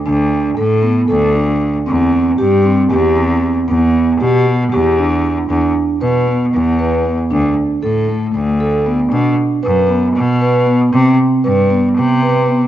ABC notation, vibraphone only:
X:1
M:7/8
L:1/8
Q:1/4=116
K:Em
V:1 name="Vibraphone"
D2 A B, A D2 | C2 G C G C2 | B,2 G B, G D2 | D2 B B,2 B B, |
D2 A A,2 A B, | D2 B B,2 B B, | C2 B B,2 B B, |]